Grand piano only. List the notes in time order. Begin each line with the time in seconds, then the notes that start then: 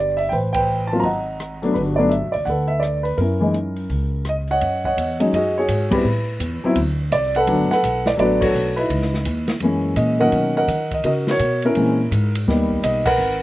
Already playing: G4 B4 D5
0.17 E5
0.29 B4 G5
0.33 C5
0.53 B4 G5
0.57 C5
0.87 A5
0.92 F#3 A#3 C4 F4
1.00 A#5
1.04 D#5 F#5
1.62 F#3 A3 B3 D4
1.74 F#4 B4
1.79 D4
1.96 F#3 A3 B3 D5
2.00 D4
2.09 E5
2.32 D5
2.45 A4 F#5
2.50 B4
2.68 E5
2.80 D5
3.03 B4
3.18 C#4 E4 A#4
3.40 E3 G#3 A#3 D#4
4.29 D#5
4.51 C#5 D#5 F#5
4.85 C#5 D#5 F#5
5.20 F#3 G#3 C#4 D#4 D#5
5.35 F#4 G#4 D#5
5.58 F#4 G#4 C#5
5.91 G3 B3 C4 E4 G4 B4
6.64 F#3 B3 C4 E4
7.12 D5
7.36 A4 B4 F#5
7.48 F#3 A3 B3 D4
7.71 A4 B4 F#5
8.07 D5
8.17 F#3 A3 B3 D4 B4 D5
8.21 F#4
8.41 F#4 A4 C#5
8.76 D#4 E4 B4
9.62 E3 G#3 A#3 C#4
9.97 D#5
10.19 D#3 F#3 A#3 C#4 A#4 D#5 F#5
10.57 A#4 D#5 F#5
10.94 D#5
11.05 F#4 A#4 D#5
11.29 F#4 A#4 C#5
11.65 C#4 E4 A#4
11.77 E3 G#3 C4 C#4
12.48 G3 A#3 B3 D#4
12.83 D#5
13.06 A#4 B4 F#5